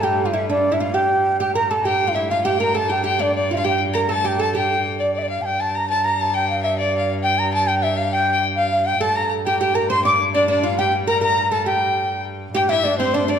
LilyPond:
<<
  \new Staff \with { instrumentName = "Bansuri" } { \time 6/8 \key g \dorian \tempo 4. = 134 g''8. f''16 e''8 d''8. e''16 f''8 | g''4. g''8 bes''8 a''8 | g''8. f''16 e''8 f''8 g''8 bes''8 | a''8 g''8 g''8 d''8 d''8 f''32 e''32 f''16 |
g''8 r8 bes''8 a''8 g''8 a''8 | g''4. d''8 d''32 e''32 d''16 f''16. a''32 | g''8 a''8 bes''8 a''8 bes''8 a''8 | g''8 f''8 e''8 d''4~ d''32 r16. |
g''8 bes''8 a''8 g''8 e''8 f''8 | g''4~ g''32 r16. f''8 f''8 g''8 | a''8 bes''8 r8 g''8 g''8 bes''8 | c'''8 d'''8 r8 d''8 d''8 f''8 |
g''8 r8 bes''8 bes''4 a''8 | g''2 r4 | g''8 e''8 d''8 c''8 d''8 d''8 | }
  \new Staff \with { instrumentName = "Fiddle" } { \time 6/8 \key g \dorian r2. | r2. | g''4 e''8 f''8 g''4 | a''8 g''8 g''8 d''8 d''8. f''16 |
g''8 r8 bes''8 a''4 a''8 | g''4. d''8 d''16 d''16 f''8 | g''8 a''8 bes''8 a''8 bes''8 a''8 | g''4 e''8 d''8~ d''32 f''8 r16. |
g''4 a''8 g''8 e''8 f''8 | g''8~ g''32 g''8 r16. f''4 g''8 | a''8 bes''8 r8 g''8 g''8 bes''8 | c'''8 d'''8 r8 d''8 d''8 f''8 |
g''8 r8 bes''8 bes''4 a''8 | g''2 r4 | g''8 e''4 c''4 d''8 | }
  \new Staff \with { instrumentName = "Oud" } { \time 6/8 \key g \dorian g'8. f'16 e'8 d'8. e'16 f'8 | g'4. g'8 bes'8 a'8 | g'8. f'16 e'8 f'8 g'8 bes'8 | a'8 g'8 g'8 d'4 f'16 f'16 |
g'8 r8 bes'8 a'8 g'8 a'8 | g'2 r4 | r2. | r2. |
r2. | r2. | a'4 r8 g'8 g'8 bes'8 | c''8 d''8 r8 d'8 d'8 f'8 |
g'8 r8 bes'8 bes'4 a'8 | g'2 r4 | g'8 e'8 d'8 c'8 d'8 d'8 | }
  \new Staff \with { instrumentName = "Viola da gamba" } { \clef bass \time 6/8 \key g \dorian g,2.~ | g,2. | g,2.~ | g,2.~ |
g,2.~ | g,2. | g,2.~ | g,2.~ |
g,2.~ | g,2. | g,2.~ | g,2.~ |
g,2.~ | g,2. | g,2. | }
>>